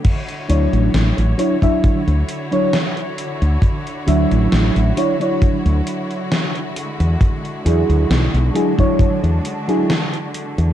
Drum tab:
CC |x---------------|----------------|----------------|
HH |xxxxxxxxxxxxxxxx|xxxxxxxxxxxxxxxx|xxxxxxxxxxxxxxxx|
SD |----o-------o---|----o-------o---|----o-------o---|
BD |o------oo-------|o-------o-------|o------oo-------|